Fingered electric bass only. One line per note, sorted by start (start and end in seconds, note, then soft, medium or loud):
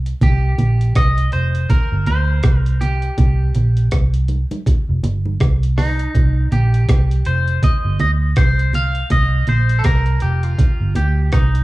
0.00 0.12 C2 medium
0.22 0.54 C2 loud
0.59 0.91 A#1 medium
0.96 1.28 C2 medium
1.33 1.65 F1 medium
1.92 2.05 G1 medium
2.07 2.39 D2 medium
2.44 3.08 C2 medium
3.18 3.50 C2 loud
3.55 3.87 A#1 medium
3.92 4.43 C2 medium
4.89 5.02 F1 medium
5.04 5.36 G1 loud
5.41 6.05 C2 medium
6.15 6.47 C2 medium
6.52 6.84 A#1 medium
6.89 7.21 C2 medium
7.26 7.58 F1 medium
7.85 7.98 G1 medium
8.00 8.32 D2 medium
8.37 9.01 C2 medium
9.11 9.43 C2 loud
9.48 9.80 A#1 medium
9.85 10.17 C2 medium
10.22 10.54 F1 medium
10.80 10.94 G1 medium
10.96 11.28 D2 loud
11.33 11.64 C2 medium